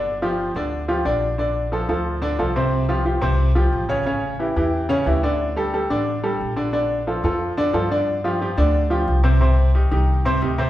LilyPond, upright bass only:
\new Staff \with { instrumentName = "Upright bass" } { \clef bass \time 4/4 \key g \minor \tempo 4 = 179 g,,4. d,4. bes,,4~ | bes,,4. d,4. c,4~ | c,4. c,4. a,,4~ | a,,4. e,4. d,4~ |
d,4. a,,4. bes,,4~ | bes,,4. f,4. g,4~ | g,4. d,4. c,4~ | c,4. c,4. d,4 | }